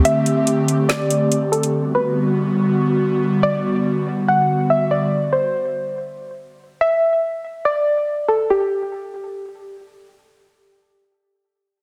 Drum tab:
HH |x-x-x-x-x-x-x-xx|----------------|----------------|----------------|
SD |--------o-------|----------------|----------------|----------------|

HH |----------------|----------------|----------------|
SD |----------------|----------------|----------------|